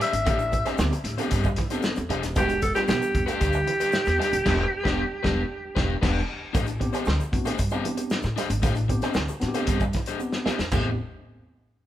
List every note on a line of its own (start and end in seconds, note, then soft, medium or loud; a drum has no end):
0.00 0.10 G3 medium
0.00 0.15 D4 medium
0.00 0.13 G4 medium
0.00 0.12 C5 medium
0.00 0.76 E5 loud
0.00 snare soft
0.00 closed hi-hat medium
0.13 0.24 G#1 medium
0.13 muted overdriven electric guitar stroke soft
0.13 closed hi-hat medium
0.13 shaker soft
0.25 0.60 A1 loud
0.25 0.36 A3 medium
0.25 0.41 D4 medium
0.25 0.39 G4 medium
0.25 0.38 C5 medium
0.25 kick loud
0.25 closed hi-hat medium
0.25 shaker medium
0.39 muted overdriven electric guitar stroke soft
0.39 shaker medium
0.52 muted overdriven electric guitar stroke soft
0.52 muted clean electric guitar stroke medium
0.52 kick medium
0.52 closed hi-hat medium
0.52 shaker medium
0.65 0.76 C4 medium
0.65 0.77 D4 medium
0.65 0.77 G4 medium
0.65 0.77 C5 medium
0.65 snare soft
0.65 closed hi-hat soft
0.65 shaker soft
0.78 0.90 D2 loud
0.78 0.91 B3 loud
0.78 0.92 C4 loud
0.78 0.89 C4 medium
0.78 0.92 D4 medium
0.78 0.92 G4 loud
0.78 muted overdriven electric guitar stroke soft
0.78 snare loud
0.78 shaker medium
0.92 muted overdriven electric guitar stroke soft
0.92 muted clean electric guitar stroke soft
0.92 closed hi-hat soft
0.92 shaker medium
1.04 1.16 A2 loud
1.04 1.11 D4 loud
1.04 1.12 G4 loud
1.04 snare soft
1.04 closed hi-hat medium
1.18 1.28 A3 medium
1.18 1.43 B3 medium
1.18 1.43 C4 medium
1.18 1.43 D4 medium
1.18 1.30 D4 medium
1.18 1.30 G4 medium
1.18 1.44 G4 loud
1.18 1.31 C5 medium
1.18 closed hi-hat soft
1.18 shaker medium
1.31 1.54 G2 medium
1.31 1.46 D4 loud
1.31 1.46 G4 medium
1.31 1.47 C5 loud
1.31 muted clean electric guitar stroke soft
1.31 kick loud
1.31 closed hi-hat medium
1.31 shaker medium
1.44 1.54 G3 medium
1.44 kick medium
1.44 shaker medium
1.56 1.67 E3 medium
1.56 muted overdriven electric guitar stroke soft
1.56 kick medium
1.56 snare soft
1.56 closed hi-hat medium
1.70 2.01 B3 loud
1.70 2.02 C4 medium
1.70 2.02 D4 medium
1.70 1.83 D4 medium
1.70 1.82 G4 medium
1.70 2.02 A4 loud
1.70 1.82 C5 medium
1.70 closed hi-hat medium
1.70 shaker medium
1.82 muted overdriven electric guitar stroke soft
1.82 snare loud
1.82 shaker medium
1.96 2.08 E2 loud
1.96 muted overdriven electric guitar stroke soft
1.96 closed hi-hat soft
1.96 shaker medium
2.09 2.24 E1 medium
2.09 2.20 G3 medium
2.09 2.24 D4 medium
2.09 2.24 G4 medium
2.09 2.22 C5 medium
2.09 closed hi-hat medium
2.23 2.37 D#1 medium
2.23 muted overdriven electric guitar stroke soft
2.23 snare soft
2.23 closed hi-hat medium
2.23 shaker soft
2.36 2.70 E1 loud
2.36 2.45 E3 medium
2.36 2.54 G3 medium
2.36 2.55 B3 medium
2.36 2.51 D4 medium
2.36 2.55 D4 medium
2.36 2.56 F#4 medium
2.36 2.61 G4 loud
2.36 2.50 G4 medium
2.36 2.49 B4 medium
2.36 kick loud
2.36 closed hi-hat medium
2.36 shaker medium
2.49 muted overdriven electric guitar stroke soft
2.49 closed hi-hat soft
2.49 shaker medium
2.62 2.75 A4 medium
2.62 muted overdriven electric guitar stroke soft
2.62 muted clean electric guitar stroke medium
2.62 kick medium
2.62 closed hi-hat medium
2.62 shaker medium
2.75 3.24 G3 medium
2.75 3.25 B3 medium
2.75 2.85 B3 medium
2.75 3.25 D4 medium
2.75 2.87 D4 soft
2.75 2.82 F4 medium
2.75 2.81 G4 loud
2.75 2.87 G4 medium
2.75 2.86 B4 medium
2.75 snare soft
2.75 closed hi-hat soft
2.75 shaker medium
2.83 3.29 G4 loud
2.88 3.00 B1 loud
2.88 2.98 B3 medium
2.88 3.25 G4 medium
2.88 muted overdriven electric guitar stroke soft
2.88 snare loud
2.88 shaker medium
3.01 muted overdriven electric guitar stroke soft
3.01 muted clean electric guitar stroke soft
3.01 shaker medium
3.15 3.26 E2 medium
3.15 kick loud
3.15 closed hi-hat medium
3.26 3.37 A3 medium
3.26 3.39 D4 medium
3.26 5.97 G4 loud
3.26 3.39 G4 medium
3.26 3.40 B4 medium
3.26 closed hi-hat soft
3.26 shaker medium
3.40 3.63 D2 medium
3.40 3.55 D4 medium
3.40 3.55 G4 medium
3.40 3.55 B4 loud
3.40 muted clean electric guitar stroke soft
3.40 kick medium
3.40 closed hi-hat medium
3.40 shaker medium
3.53 3.64 G3 medium
3.53 shaker medium
3.67 3.76 E3 medium
3.67 muted overdriven electric guitar stroke soft
3.67 closed hi-hat medium
3.80 3.92 D4 soft
3.80 3.92 G4 medium
3.80 3.91 B4 medium
3.80 closed hi-hat medium
3.80 shaker medium
3.92 snare loud
3.92 shaker medium
4.05 4.18 E2 loud
4.05 muted overdriven electric guitar stroke soft
4.05 snare soft
4.05 closed hi-hat soft
4.05 shaker medium
4.19 4.29 G3 medium
4.19 4.33 D4 medium
4.19 4.32 G4 medium
4.19 4.31 B4 medium
4.19 snare soft
4.19 closed hi-hat medium
4.32 4.44 D#1 medium
4.32 muted overdriven electric guitar stroke soft
4.32 closed hi-hat medium
4.32 shaker soft
4.45 4.63 E1 loud
4.45 4.63 G3 loud
4.45 4.64 B3 loud
4.45 4.63 D4 loud
4.45 4.64 D4 loud
4.45 4.63 G4 loud
4.45 4.64 G4 loud
4.45 4.64 B4 medium
4.45 kick loud
4.45 snare loud
4.45 crash medium
4.83 5.03 E1 medium
4.83 5.02 G3 loud
4.83 5.02 B3 loud
4.83 5.03 D4 loud
4.83 5.02 G4 loud
4.83 5.03 G4 loud
4.83 5.02 B4 loud
4.83 kick medium
4.83 snare loud
5.23 5.42 E1 loud
5.23 5.42 G3 medium
5.23 5.42 B3 loud
5.23 5.42 D4 loud
5.23 5.42 G4 loud
5.23 5.41 B4 loud
5.23 kick loud
5.23 snare loud
5.75 5.94 E1 loud
5.75 5.94 G3 medium
5.75 5.94 B3 medium
5.75 5.94 D4 medium
5.75 5.94 D4 loud
5.75 5.94 G4 loud
5.75 5.93 B4 loud
5.75 kick loud
5.75 snare loud
6.01 6.20 E1 loud
6.01 6.20 G3 loud
6.01 6.20 B3 loud
6.01 6.20 D4 loud
6.01 6.20 G4 medium
6.01 6.20 B4 medium
6.01 kick loud
6.01 snare loud
6.01 crash medium
6.53 6.88 A1 loud
6.53 6.64 A3 medium
6.53 6.68 D4 medium
6.53 6.66 G4 loud
6.53 6.66 C5 loud
6.53 kick loud
6.53 closed hi-hat medium
6.53 shaker medium
6.66 muted overdriven electric guitar stroke soft
6.66 closed hi-hat soft
6.66 shaker medium
6.80 7.05 B3 medium
6.80 7.05 C4 medium
6.80 7.05 D4 medium
6.80 7.06 G4 loud
6.80 muted overdriven electric guitar stroke soft
6.80 muted clean electric guitar stroke soft
6.80 kick medium
6.80 closed hi-hat medium
6.93 7.03 C4 medium
6.93 7.05 D4 medium
6.93 7.05 G4 medium
6.93 7.05 C5 medium
6.93 closed hi-hat soft
6.93 shaker medium
7.05 7.18 D2 loud
7.05 7.16 C4 medium
7.05 muted overdriven electric guitar stroke medium
7.05 snare loud
7.05 shaker medium
7.20 muted overdriven electric guitar stroke soft
7.20 muted clean electric guitar stroke soft
7.20 shaker medium
7.32 7.44 A2 medium
7.32 7.51 B3 loud
7.32 7.51 C4 medium
7.32 7.51 D4 medium
7.32 7.52 F#4 medium
7.32 kick loud
7.32 closed hi-hat medium
7.45 7.55 A3 medium
7.45 7.57 D4 medium
7.45 7.58 G4 medium
7.45 7.59 C5 medium
7.45 closed hi-hat medium
7.45 shaker medium
7.58 7.81 G2 medium
7.58 muted overdriven electric guitar stroke medium
7.58 muted clean electric guitar stroke soft
7.58 kick medium
7.58 closed hi-hat medium
7.58 shaker medium
7.70 7.81 G3 medium
7.70 8.21 B3 loud
7.70 8.21 C4 medium
7.70 8.22 D4 loud
7.70 7.84 D4 medium
7.70 7.85 G4 medium
7.70 8.22 G4 loud
7.70 7.85 C5 medium
7.70 shaker medium
7.85 7.94 E3 medium
7.85 muted overdriven electric guitar stroke soft
7.85 closed hi-hat medium
7.97 muted overdriven electric guitar stroke medium
7.97 closed hi-hat medium
7.97 shaker medium
8.10 snare loud
8.10 shaker medium
8.22 8.35 A2 loud
8.22 muted overdriven electric guitar stroke soft
8.22 snare soft
8.22 shaker soft
8.36 8.47 G3 medium
8.36 8.51 D4 medium
8.36 8.49 G4 loud
8.36 8.48 C5 medium
8.36 snare soft
8.36 closed hi-hat medium
8.36 shaker medium
8.49 8.61 G#1 loud
8.49 muted overdriven electric guitar stroke soft
8.49 closed hi-hat medium
8.49 shaker soft
8.62 8.96 A1 loud
8.62 8.73 A3 medium
8.62 8.77 D4 medium
8.62 8.76 G4 medium
8.62 8.75 C5 loud
8.62 kick loud
8.62 closed hi-hat medium
8.62 shaker medium
8.75 muted overdriven electric guitar stroke soft
8.75 closed hi-hat soft
8.75 shaker medium
8.88 9.13 B3 medium
8.88 9.14 C4 medium
8.88 9.14 D4 medium
8.88 9.14 G4 loud
8.88 muted overdriven electric guitar stroke soft
8.88 muted clean electric guitar stroke medium
8.88 kick medium
8.88 closed hi-hat medium
9.02 9.12 C4 medium
9.02 9.14 D4 soft
9.02 9.14 G4 medium
9.02 9.14 C5 medium
9.02 snare soft
9.02 closed hi-hat soft
9.02 shaker medium
9.14 9.27 D2 medium
9.14 9.25 C4 medium
9.14 muted overdriven electric guitar stroke soft
9.14 snare loud
9.14 shaker medium
9.28 muted overdriven electric guitar stroke soft
9.28 muted clean electric guitar stroke soft
9.28 shaker medium
9.40 9.53 A2 loud
9.40 9.78 B3 loud
9.40 9.78 C4 loud
9.40 9.78 D4 medium
9.40 9.48 F#4 medium
9.40 snare soft
9.40 closed hi-hat medium
9.48 9.82 G4 loud
9.54 9.64 A3 medium
9.54 9.66 D4 medium
9.54 9.67 G4 medium
9.54 9.68 C5 medium
9.54 closed hi-hat medium
9.54 shaker medium
9.67 9.90 G2 loud
9.67 9.82 D4 medium
9.67 9.83 G4 medium
9.67 9.83 C5 medium
9.67 muted clean electric guitar stroke soft
9.67 kick loud
9.67 closed hi-hat medium
9.67 shaker medium
9.80 9.90 G3 medium
9.80 kick loud
9.80 shaker medium
9.93 10.04 E3 medium
9.93 muted overdriven electric guitar stroke soft
9.93 kick medium
9.93 snare soft
9.93 closed hi-hat medium
10.06 10.19 D4 medium
10.06 10.19 G4 medium
10.06 10.18 C5 medium
10.06 closed hi-hat medium
10.06 shaker medium
10.19 10.56 B3 loud
10.19 10.57 C4 medium
10.19 10.57 D4 medium
10.19 10.57 G4 loud
10.19 shaker medium
10.32 muted overdriven electric guitar stroke soft
10.32 snare medium
10.32 shaker medium
10.46 10.55 G3 medium
10.46 10.60 D4 medium
10.46 10.59 G4 medium
10.46 10.58 C5 medium
10.46 muted upright bass stroke soft
10.46 snare medium
10.46 shaker medium
10.59 10.70 E2 medium
10.59 muted overdriven electric guitar stroke soft
10.59 snare medium
10.59 shaker soft
10.71 10.96 A1 loud
10.71 10.88 A3 medium
10.71 10.97 B3 medium
10.71 10.97 C4 medium
10.71 10.97 D4 medium
10.71 10.88 D4 medium
10.71 10.97 G4 medium
10.71 10.88 G4 medium
10.71 10.89 C5 medium
10.71 kick loud
10.71 floor tom loud
10.71 crash medium
10.71 shaker medium